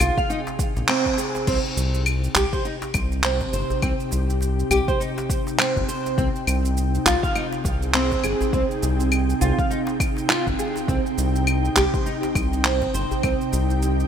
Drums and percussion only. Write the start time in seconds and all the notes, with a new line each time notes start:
0.00 djembe bass, claves, shaker
0.18 kick, shaker
0.30 shaker
0.47 djembe slap, shaker
0.59 kick, shaker
0.77 djembe slap, shaker
0.88 clap, claves, shaker
1.06 kick, shaker
1.18 shaker
1.35 djembe slap, djembe tone, shaker
1.47 kick, crash, shaker
1.65 shaker
1.77 shaker
1.94 shaker
2.06 claves, shaker
2.24 shaker
2.35 clap, djembe bass, shaker
2.53 kick, shaker
2.65 shaker
2.82 djembe slap, shaker
2.94 kick, djembe tone, claves, shaker
3.12 shaker
3.24 clap, shaker
3.41 kick, djembe slap, shaker
3.53 shaker
3.70 djembe bass, shaker
3.82 kick, claves, shaker
4.00 shaker
4.11 djembe tone, shaker
4.30 djembe tone, shaker
4.41 djembe slap, shaker
4.59 shaker
4.71 djembe bass, claves, shaker
4.88 kick, shaker
5.01 shaker
5.18 djembe slap, shaker
5.30 kick, shaker
5.47 djembe slap, shaker
5.59 clap, claves, shaker
5.76 kick, shaker
5.89 shaker
6.06 djembe slap, shaker
6.18 kick, shaker
6.36 shaker
6.47 claves, shaker
6.65 shaker
6.77 shaker
6.95 shaker
7.06 clap, djembe bass, shaker
7.23 kick, shaker
7.36 claves, shaker
7.53 djembe slap, shaker
7.64 kick, djembe tone, shaker
7.82 shaker
7.94 clap, shaker
8.11 kick, djembe slap, shaker
8.24 claves, shaker
8.41 djembe bass, shaker
8.53 kick, shaker
8.71 shaker
8.82 djembe tone, shaker
9.00 djembe tone, shaker
9.11 djembe slap, claves, shaker
9.30 shaker
9.41 djembe bass, shaker
9.59 kick, shaker
9.71 shaker
9.87 djembe slap, shaker
10.00 kick, claves, shaker
10.17 djembe slap, shaker
10.30 clap, shaker
10.47 kick, shaker
10.59 shaker
10.76 djembe slap, shaker
10.88 kick, shaker
11.06 shaker
11.18 shaker
11.36 shaker
11.47 claves, shaker
11.65 shaker
11.76 clap, djembe bass, shaker
11.94 kick, shaker
12.06 shaker
12.23 djembe slap, shaker
12.35 kick, djembe tone, claves, shaker
12.53 shaker
12.65 clap, shaker
12.82 kick, djembe slap, shaker
12.94 shaker
13.11 djembe bass, shaker
13.23 kick, claves, shaker
13.41 shaker
13.52 djembe tone, shaker
13.70 djembe tone, shaker
13.82 djembe slap, shaker
14.00 shaker